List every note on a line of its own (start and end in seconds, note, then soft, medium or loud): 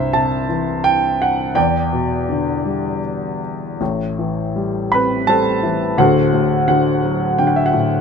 0.00 1.51 C2 medium
0.00 1.15 G2 soft
0.00 0.45 E4 medium
0.00 1.57 C5 medium
0.00 0.15 E5 medium
0.13 1.51 C3 soft
0.13 0.85 A5 medium
0.49 1.52 E3 soft
0.84 1.20 G5 medium
1.22 1.58 F#5 medium
1.55 3.77 E2 medium
1.55 2.99 D5 medium
1.55 2.99 G5 medium
1.93 3.39 B2 soft
2.29 3.77 D3 soft
2.65 3.78 G3 soft
3.80 5.93 A1 medium
3.80 5.93 A2 medium
4.19 5.59 E3 soft
4.56 5.25 G3 soft
4.92 5.95 C4 soft
4.92 5.26 B4 medium
4.92 5.29 B5 medium
5.27 5.95 G3 soft
5.27 5.95 A4 medium
5.27 5.95 C5 medium
5.27 5.94 A5 medium
5.63 5.97 E3 soft
5.98 8.01 D1 medium
5.98 8.01 D2 medium
5.98 6.65 F#4 medium
5.98 6.65 A4 medium
5.98 6.65 C5 medium
5.98 6.66 F#5 medium
6.33 7.69 A2 soft
6.67 7.37 D3 medium
6.67 7.36 F#4 soft
6.67 7.36 C5 soft
6.67 7.35 F#5 medium
7.04 8.01 F#3 soft
7.38 8.01 D3 medium
7.38 7.47 G5 medium
7.47 7.56 F#5 medium
7.56 7.65 E5 medium
7.66 7.74 F#5 medium
7.73 8.01 A2 soft